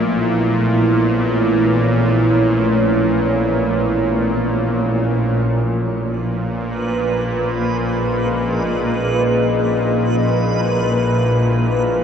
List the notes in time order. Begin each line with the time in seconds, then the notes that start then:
Already playing: A#1 A#2 A3 E4 G#4 B4 D#5 E5
0.17 C#5
5.47 A#1 A#2 C#4 B4
5.96 G#4
6.97 D#5
8.91 E5